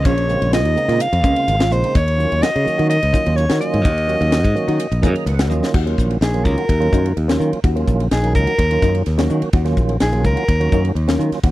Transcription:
Already playing: C#3 G#3 A#3 C4 F4
0.05 A#1 C#4 C#5, kick, hi-hat pedal, ride
0.18 ride
0.28 C#3 G#3 A#3 C4 F4, hi-hat pedal
0.42 A#1, ride
0.53 F4 D#5, snare, hi-hat pedal, ride
0.65 D#2, ride
0.75 C#3 G#3 A#3 C4 D#4, hi-hat pedal
0.88 A#2 F4, snare, ride
1.00 F5, hi-hat pedal, ride
1.13 F2, ride
1.23 C#2 C#3 G#3 A#3 C4 C#4 F4, kick, hi-hat pedal
1.36 ride
1.48 G#1, hi-hat pedal, ride
1.59 F4, snare, ride
1.71 A#1 C#3 G#3 A#3 C4 D#4 C5, hi-hat pedal
1.84 ride
1.95 D#2 D#4 C#5, kick, hi-hat pedal, ride
2.08 ride
2.18 D#3 F#3 A#3 C#4 F4, hi-hat pedal
2.32 D#2, ride
2.42 F#4 D#5, snare, hi-hat pedal, ride
2.56 C#3, ride
2.64 D#3 F#3 A#3 C#4 F#4, muted fingered electric bass stroke, hi-hat pedal
2.78 D#3 F#4, ride
2.89 D#5, hi-hat pedal, ride
3.03 C#2, ride
3.13 D#3 F#3 A#3 C#4 D#4 F4, kick, hi-hat pedal
3.26 D#2, ride
3.36 C#5, hi-hat pedal, ride
3.49 D#3 F#4, snare, ride
3.60 D#3 F#3 A#3 C#4 F4 D#5, hi-hat pedal
3.74 G#2, ride
3.85 D#2 D#4, kick, hi-hat pedal, ride
3.98 ride
4.07 D#3 F#3 A#3 C#4 F#4, hi-hat pedal
4.21 D#2, ride
4.32 F#4, snare, hi-hat pedal, ride
4.44 G#2, kick, ride
4.55 D#3 F#3 A#3 C#4 F#4, hi-hat pedal
4.68 D#3 F#4, ride
4.80 hi-hat pedal, ride
4.92 A#1, ride
5.02 F#2 D#3 F#3 A#3 C#4 D#4 G#4 A#5, kick, hi-hat pedal
5.16 ride
5.26 C#2 F#5, hi-hat pedal, ride
5.39 F#4, snare, ride
5.49 D#2 D#3 F#3 A#3 C#4 F4 D#5, hi-hat pedal, high tom
5.63 snare
5.74 D#2 F#4, kick, crash
5.86 D#3 F#3 A#3 C#4 F4, ride
5.98 A#1, kick, hi-hat pedal
6.10 ride
6.21 A#1 D#4 G#4, snare, ride
6.33 D#3 F#3 A#3 C#4 F4, ride
6.45 C#2 A#4, kick, hi-hat pedal
6.58 F#4, ride
6.69 D#2, kick, ride
6.80 D#3 F#3 A#3 C#4 F4, ride
6.93 F#2 D#4, kick, hi-hat pedal
7.06 ride
7.17 D#2, ride
7.28 D#3 F#3 A#3 C#4 F4, snare, ride
7.40 D#3, hi-hat pedal
7.53 muted fingered electric bass stroke, ride
7.64 D#2 F#4, kick, ride
7.76 D#3 F#3 A#3 C#4 F4, ride
7.88 A#1, kick, hi-hat pedal
8.00 ride
8.11 A#1 D#4 G#4, snare, ride
8.23 D#3 F#3 A#3 C#4 D#4, ride
8.35 C#2 A#4, kick, hi-hat pedal
8.47 F#4, ride
8.58 D#2, kick, ride
8.70 D#3 F#3 A#3 C#4 F4, ride
8.82 F#2 D#4, kick, hi-hat pedal
8.95 ride
9.06 D#2, snare, ride
9.18 D#3 F#3 A#3 C#4 F#4, snare, ride
9.30 D#3, hi-hat pedal
9.42 muted fingered electric bass stroke, ride
9.53 D#2 F#4, kick, ride
9.65 D#3 F#3 A#3 C#4 F4, snare, ride
9.77 A#1, kick, hi-hat pedal
9.89 ride
10.00 A#1 D#4 G#4, snare, ride
10.12 D#3 F#3 A#3 C#4 F4, ride
10.24 C#2 A#4, kick, hi-hat pedal
10.37 F#4, ride
10.48 D#2, kick, ride
10.60 D#3 F#3 A#3 C#4 F#4, ride
10.72 F#2 D#4, kick, hi-hat pedal
10.85 ride
10.95 D#2, ride
11.07 D#3 F#3 A#3 C#4 F4, snare, ride
11.19 D#3, hi-hat pedal
11.32 muted fingered electric bass stroke, snare, ride
11.43 D#2 F#4, kick, ride

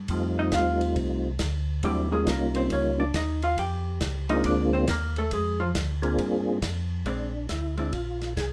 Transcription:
0.08 F2 G3 A3 C4 D#4 F4, kick, ride
0.39 D#4 D#5
0.52 D#2 F4 F5, kick, snare, hi-hat pedal, ride
0.81 ride
0.96 C2, kick, ride
1.39 D2, kick, snare, hi-hat pedal, ride
1.83 D#2 F#3 G3 A3 C4 D4 E4 G4, kick, ride
2.11 G3 G#3 A#3 C#4 D#4 F4 G#4
2.26 C2 A#3 A#4, kick, snare, hi-hat pedal, ride
2.55 C4 C5, ride
2.70 C#2 C#4 C#5, kick, ride
3.00 D4 D5
3.14 D#2 D#4 D#5, kick, snare, hi-hat pedal, ride
3.42 F4 F5, ride
3.57 F2 G4 G5, kick, ride
4.01 C#2, kick, snare, hi-hat pedal, ride
4.29 G#3 A#3 C4 D4 D#4 F4 D#5, ride
4.44 D2 D4 D5, kick, ride
4.73 C4 C5
4.87 D#2 A#3 A#4, kick, snare, hi-hat pedal, ride
5.16 A3 A4, ride
5.31 F2 G#3 G#4, kick, ride
5.60 F3 F4
5.75 D2, kick, snare, hi-hat pedal, ride
6.02 A#3 C4 D4 F4 G#4, ride
6.18 G2, kick, ride
6.62 F2, kick, snare, hi-hat pedal, ride
7.05 A#1 G#3 C4 D4, kick, ride
7.49 D2 E4, kick, snare, hi-hat pedal, ride
7.77 G#3 C4 D4 E4, ride
7.89 A#1 E4 F4, ride
7.93 kick
8.21 snare, ride
8.36 C2 G#4, kick, snare, hi-hat pedal, ride

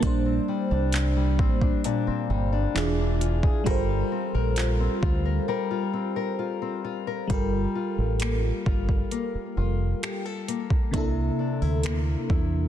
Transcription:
Already playing: C3 A#3 A4
0.00 A#1 G3 A#3 D4, kick, closed hi-hat
0.04 D4 C5
0.25 C4
0.48 G3
0.71 C2 D4
0.92 C4, clap, closed hi-hat
1.16 G3
1.39 A1 C4, kick
1.61 D4, kick
1.84 A#2 D4, closed hi-hat
2.07 C4, muted fingered electric bass stroke
2.30 G1 G3
2.53 D4
2.75 E1 E3 D4 F4 G#4, clap, closed hi-hat
2.98 D4
3.21 F4, closed hi-hat
3.43 G#4, kick
3.64 G1 G3 F4 A4 A#4, kick, closed hi-hat
3.69 A#4 C5
3.89 F4
4.12 C4
4.34 A#1 A#4
4.56 F4, clap, closed hi-hat
4.80 C4
5.03 D2 F4, kick
5.25 A#4
5.48 G3 A#4
5.71 F4
5.93 C4
6.16 A#4
6.39 F4
6.62 C4
6.84 F4
7.07 A#4
7.27 G1 G3 F4, kick, closed hi-hat
7.32 A4 A#4
7.75 F4
7.98 A1
8.20 A#3, finger snap, closed hi-hat
8.66 G1 F4, kick
8.89 kick
9.11 A#3, closed hi-hat
9.35 muted fingered electric bass stroke
9.57 F1 F4
10.03 G4, finger snap, closed hi-hat
10.25 A4
10.48 A#3, closed hi-hat
10.70 kick
10.91 C2 C3 A#3 D4, kick, closed hi-hat
10.96 E4 A4
11.39 D4
11.62 D2 E4
11.83 A#3, finger snap, closed hi-hat
12.30 E2 E4, kick

